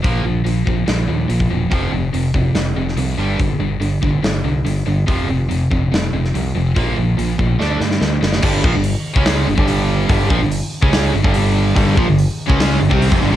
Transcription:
<<
  \new Staff \with { instrumentName = "Overdriven electric guitar" } { \clef bass \time 4/4 \key g \minor \tempo 4 = 143 r1 | r1 | r1 | r1 |
r1 | r1 | r1 | <g, d g>8 <bes, f>16 <g, d>8 r8 <cis aes cis'>8. <g, d>16 <c g c'>8 <f, c>16 <g, d>16 <c g>16 | }
  \new Staff \with { instrumentName = "Distorted electric guitar" } { \clef bass \time 4/4 \key g \minor <bes, f bes>8 <bes, f>8 <bes, f>8 <bes, f>8 <bes, f>8 <bes, f>8 <bes, f>8 <bes, f>8 | <f, c f>8 <f, c>8 <f, c>8 <f, c>8 <f, c>8 <f, c>8 <f, c>8 <g, d g>8 | <g, d>8 <g, d>8 <g, d>8 <g, d>8 <g, d>8 <g, d>8 <g, d>8 <g, d>8 | <f, c f>8 <f, c>8 <f, c>8 <f, c>8 <f, c>8 <f, c>8 <f, c>8 <f, c>8 |
<bes, f bes>8 <bes, f>8 <bes, f>8 <bes, f>8 <d a d'>8 <d a>8 <d a>8 <d a>8 | <g, d g>8 <bes, f>16 <g, d>8 r8 <cis aes cis'>8. <g, d>16 <g, d g>4~ <g, d g>16 | <g, d g>8 <bes, f>16 <g, d>8 r8 <cis aes cis'>8. <g, d>16 <g, d g>4~ <g, d g>16 | <g, d g>8 <bes, f>16 <g, d>8 r8 <cis aes cis'>8. <g, d>16 <c g c'>8 <f, c>16 <g, d>16 <c g>16 | }
  \new Staff \with { instrumentName = "Overdriven electric guitar" } { \clef bass \time 4/4 \key g \minor <bes, f bes>8 <bes, f>8 <bes, f>8 <bes, f>8 <bes, f>8 <bes, f>8 <bes, f>8 <bes, f>8 | <f, c f>8 <f, c>8 <f, c>8 <f, c>8 <f, c>8 <f, c>8 <f, c>8 <g, d g>8 | <g, d>8 <g, d>8 <g, d>8 <g, d>8 <g, d>8 <g, d>8 <g, d>8 <g, d>8 | <f, c f>8 <f, c>8 <f, c>8 <f, c>8 <f, c>8 <f, c>8 <f, c>8 <f, c>8 |
<bes, f bes>8 <bes, f>8 <bes, f>8 <bes, f>8 <d a d'>8 <d a>8 <d a>8 <d a>8 | <g, d g>8 <bes, f>16 <g, d>8 r8 <cis aes cis'>8. <g, d>16 <g, d g>4~ <g, d g>16 | <g, d g>8 <bes, f>16 <g, d>8 r8 <cis aes cis'>8. <g, d>16 <g, d g>4~ <g, d g>16 | <g, d g>8 <bes, f>16 <g, d>8 r8 <cis aes cis'>8. <g, d>16 <c g c'>8 <f, c>16 <g, d>16 c16 | }
  \new Staff \with { instrumentName = "Fingered electric bass" } { \clef bass \time 4/4 \key g \minor bes,,8 bes,,8 bes,,8 bes,,8 bes,,8 ees,8 bes,,8 e,,8 | f,,8 f,,8 f,,8 f,,8 f,,8 f,,8 c,8 g,,8 | g,,8 g,,8 g,,8 g,,8 g,,8 c,8 g,,8 g,,8 | f,,8 f,,8 f,,8 f,,8 f,,8 f,,8 c,8 f,,8 |
bes,,8 bes,,8 bes,,8 bes,,8 d,8 g,8 d,8 fis,,8 | g,,8 bes,,16 g,,8 r8 cis,8. g,,16 g,,4~ g,,16 | g,,8 bes,,16 g,,8 r8 cis,8. g,,16 g,,4~ g,,16 | g,,8 bes,,16 g,,8 r8 cis,8. g,,16 c,8 f,,16 g,,16 c,16 | }
  \new DrumStaff \with { instrumentName = "Drums" } \drummode { \time 4/4 <hho bd>4 hho8 bd8 <hho sn>4 hho16 bd8. | <hho bd>4 hho8 bd8 <hho sn>8. sn16 hho4 | <hho bd>4 hho8 bd8 <hho sn>4 hho4 | <hho bd>4 hho8 bd8 <hho sn>8. sn16 hho4 |
<hho bd>4 hho8 bd8 sn8 sn16 sn16 sn8 sn16 sn16 | <cymc bd>8 bd8 hho8. bd16 <hho sn>8. bd16 hho4 | <hho bd>8 bd8 hho8. bd16 <hho sn>8. bd16 hho4 | <hho bd>8 bd8 hho8. bd16 <hho sn>8. bd16 hho16 bd8. | }
>>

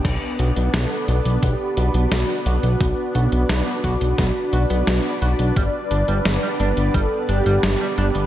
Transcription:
<<
  \new Staff \with { instrumentName = "Analog polysynth" } { \time 4/4 \key b \minor \tempo 4 = 87 b'4 a'4 g'8 fis'4 fis'8~ | fis'2. fis'4 | d''4 b'4 a'8 g'4 g'8 | }
  \new Staff \with { instrumentName = "Analog synth pad" } { \time 4/4 \key b \minor << { <d' b' d''>1~ | <d' b' d''>1~ | <d' b' d''>1 | } \\ { b1~ | b1 | <g b>1 | } >> }
  \new Staff \with { instrumentName = "Clean electric guitar" } { \time 4/4 \key b \minor b16 r16 fis'16 b16 r16 b16 fis'16 r16 b16 r16 fis'16 b16 r16 b16 fis'16 r16 | b16 r16 fis'16 b16 r16 b16 fis'16 r16 b16 r16 fis'16 b16 r16 b16 fis'16 r16 | g16 r16 d'16 g16 r16 g16 d'16 r16 g16 r16 d'16 g16 r16 g16 d'16 r16 | }
  \new Staff \with { instrumentName = "Analog synth bass" } { \clef bass \time 4/4 \key b \minor b,,16 r16 b,,16 b,,16 b,,16 r16 b,,16 b,,16 b,,16 r16 b,,16 b,,16 b,,16 r16 b,,16 b,,16 | b,,16 r16 b,,16 b,,16 b,,16 r16 b,,16 b,,16 b,,16 r16 b,,16 b,,16 b,,16 r16 b,,16 b,,16 | g,,16 r16 g,,16 g,,16 g,,16 r16 g,,16 g,,16 g,,16 r16 g,,16 g,,16 g,,16 r16 g,,16 g,,16 | }
  \new DrumStaff \with { instrumentName = "Drums" } \drummode { \time 4/4 <cymc hh bd>8 hh16 hh16 <hh sn>8 hh16 hh16 <hh bd>8 hh16 hh16 <hh sn>8 hh16 hh16 | <hh bd>8 hh16 hh16 <hh sn>8 <hh bd>16 hh16 <hh bd sn>8 hh16 hh16 <hh sn>8 hh16 hh16 | <hh bd>8 hh16 hh16 <hh sn>8 hh16 hh16 <hh bd>8 hh16 hh16 <hh sn>8 hh16 hh16 | }
>>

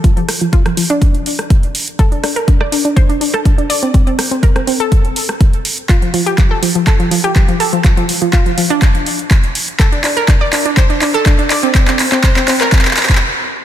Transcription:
<<
  \new Staff \with { instrumentName = "Synth pluck" } { \time 4/4 \key c \mixolydian \tempo 4 = 123 f16 f16 r16 f16 f'16 f16 f16 d'2 r16 | a'16 d'16 d'16 bes'16 d'16 d''16 d'16 d'16 c''16 d'16 d'16 a'16 d'16 d'16 d''16 c'16 | c'16 c'16 r16 c'16 bes'16 c'16 c'16 a'2 r16 | f'16 f16 f16 g'16 f16 a'16 f16 f16 a'16 f16 f16 g'16 f16 f16 a'16 f16 |
f16 f16 r16 f16 f'16 f16 f16 d'2 r16 | a'16 d'16 d'16 bes'16 d'16 d''16 d'16 d'16 c''16 d'16 d'16 a'16 d'16 d'16 d''16 c'16 | c'16 c'16 r16 c'16 c''16 c'16 c'16 bes'4~ bes'16 r4 | }
  \new DrumStaff \with { instrumentName = "Drums" } \drummode { \time 4/4 <hh bd>16 hh16 <hho ss>16 hh16 <hh bd>16 <hh ss>16 hho16 hh16 <hh bd>16 hh16 hho16 <hh ss>16 <hh bd>16 hh16 hho16 hh16 | <hh bd>16 hh16 <hho ss>16 hh16 <hh bd>16 ss16 hho16 hh16 <hh bd>16 hh16 hho16 ss16 <hh bd>16 hh16 hho16 hh16 | <hh bd>16 hh16 <hho ss>16 hh16 <hh bd>16 <hh ss>16 hho16 hh16 <hh bd>16 hh16 hho16 ss16 <hh bd>16 hh16 hho16 hh16 | <hc hh bd>16 hh16 hho16 hh16 <hc hh bd>8 hho16 hh16 <hc hh bd>16 hh16 hho16 hh16 <hc hh bd>16 hh16 hho16 hh16 |
<hc hh bd>16 hh16 hho16 hh16 <hc hh bd>16 hh16 hho16 hh16 <hc hh bd>16 hh16 hho16 hh16 <hc hh bd>16 hh16 hho16 hh16 | <hc hh bd>16 hh16 <hc hho>16 hh16 <hc hh bd>8 <hc hho>16 hh16 <hc hh bd>16 hh16 <hc hho>16 hh16 <hc hh bd>16 hh16 <hc hho>16 hh16 | <hc hh bd>16 <hc hh>16 <hc hho>16 <hc hh>16 <hc hh bd>16 <hc hh>16 <hc hho>16 <hc hh>16 <hc hh bd>32 hc32 <hc hh>32 hc32 <hc hho>32 hc32 <hc hh bd>32 hc32 r4 | }
>>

